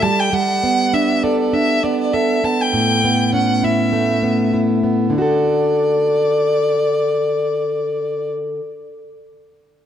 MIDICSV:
0, 0, Header, 1, 3, 480
1, 0, Start_track
1, 0, Key_signature, 2, "major"
1, 0, Tempo, 601202
1, 263, Time_signature, 4, 2, 24, 8
1, 7869, End_track
2, 0, Start_track
2, 0, Title_t, "Violin"
2, 0, Program_c, 0, 40
2, 17, Note_on_c, 0, 81, 83
2, 154, Note_on_c, 0, 79, 75
2, 166, Note_off_c, 0, 81, 0
2, 262, Note_on_c, 0, 78, 84
2, 274, Note_off_c, 0, 79, 0
2, 748, Note_on_c, 0, 76, 74
2, 760, Note_off_c, 0, 78, 0
2, 984, Note_on_c, 0, 74, 74
2, 996, Note_off_c, 0, 76, 0
2, 1115, Note_off_c, 0, 74, 0
2, 1122, Note_on_c, 0, 74, 67
2, 1223, Note_on_c, 0, 76, 78
2, 1235, Note_off_c, 0, 74, 0
2, 1463, Note_on_c, 0, 74, 69
2, 1475, Note_off_c, 0, 76, 0
2, 1594, Note_off_c, 0, 74, 0
2, 1600, Note_on_c, 0, 74, 67
2, 1703, Note_on_c, 0, 76, 70
2, 1715, Note_off_c, 0, 74, 0
2, 1951, Note_on_c, 0, 81, 78
2, 1963, Note_off_c, 0, 76, 0
2, 2085, Note_on_c, 0, 79, 79
2, 2097, Note_off_c, 0, 81, 0
2, 2667, Note_off_c, 0, 79, 0
2, 2670, Note_on_c, 0, 78, 72
2, 2908, Note_on_c, 0, 76, 72
2, 2920, Note_off_c, 0, 78, 0
2, 3624, Note_off_c, 0, 76, 0
2, 4107, Note_on_c, 0, 74, 73
2, 6631, Note_off_c, 0, 74, 0
2, 7869, End_track
3, 0, Start_track
3, 0, Title_t, "Steel-string acoustic guitar"
3, 0, Program_c, 1, 25
3, 0, Note_on_c, 1, 69, 59
3, 23, Note_on_c, 1, 55, 67
3, 254, Note_off_c, 1, 55, 0
3, 264, Note_on_c, 1, 55, 73
3, 288, Note_off_c, 1, 69, 0
3, 507, Note_on_c, 1, 59, 51
3, 746, Note_on_c, 1, 62, 51
3, 988, Note_on_c, 1, 69, 59
3, 1213, Note_off_c, 1, 62, 0
3, 1223, Note_on_c, 1, 62, 59
3, 1465, Note_off_c, 1, 59, 0
3, 1468, Note_on_c, 1, 59, 51
3, 1704, Note_off_c, 1, 69, 0
3, 1707, Note_on_c, 1, 69, 58
3, 1944, Note_off_c, 1, 59, 0
3, 1947, Note_on_c, 1, 59, 49
3, 2181, Note_off_c, 1, 55, 0
3, 2182, Note_on_c, 1, 45, 67
3, 2234, Note_off_c, 1, 62, 0
3, 2426, Note_off_c, 1, 59, 0
3, 2429, Note_on_c, 1, 59, 51
3, 2453, Note_off_c, 1, 69, 0
3, 2660, Note_on_c, 1, 61, 47
3, 2901, Note_on_c, 1, 64, 58
3, 3134, Note_on_c, 1, 57, 54
3, 3366, Note_off_c, 1, 59, 0
3, 3375, Note_on_c, 1, 59, 46
3, 3612, Note_off_c, 1, 64, 0
3, 3622, Note_on_c, 1, 64, 53
3, 3850, Note_off_c, 1, 59, 0
3, 3860, Note_on_c, 1, 59, 48
3, 4067, Note_off_c, 1, 57, 0
3, 4070, Note_on_c, 1, 50, 60
3, 4101, Note_off_c, 1, 45, 0
3, 4134, Note_off_c, 1, 59, 0
3, 4137, Note_on_c, 1, 66, 69
3, 4154, Note_off_c, 1, 64, 0
3, 4165, Note_on_c, 1, 69, 68
3, 5454, Note_off_c, 1, 61, 0
3, 6864, Note_off_c, 1, 50, 0
3, 6931, Note_off_c, 1, 66, 0
3, 6960, Note_off_c, 1, 69, 0
3, 7869, End_track
0, 0, End_of_file